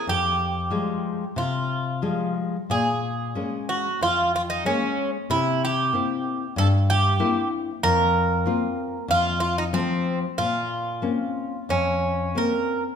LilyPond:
<<
  \new Staff \with { instrumentName = "Bouzouki" } { \time 4/4 \key f \minor \tempo 4 = 93 g'2 f'4. r8 | \key bes \minor aes'4. ges'8 f'8 f'16 ees'16 des'8. r16 | e'8 g'4. a'8 g'4 r8 | bes'2 f'8 f'16 ees'16 c'8. r16 |
f'2 des'4 bes'8. r16 | }
  \new Staff \with { instrumentName = "Nylon-string guitar" } { \time 4/4 \key f \minor f,4 <f g aes>4 c4 <f g aes>4 | \key bes \minor bes,4 <aes bes des'>4 f,4 <aes bes des'>4 | c4 <bes c' e'>4 g,4 <bes c' e'>4 | f,4 <bes c' f'>4 f,4 <f a c'>4 |
bes,4 <bes c' des'>4 f,4 <bes c' des'>4 | }
>>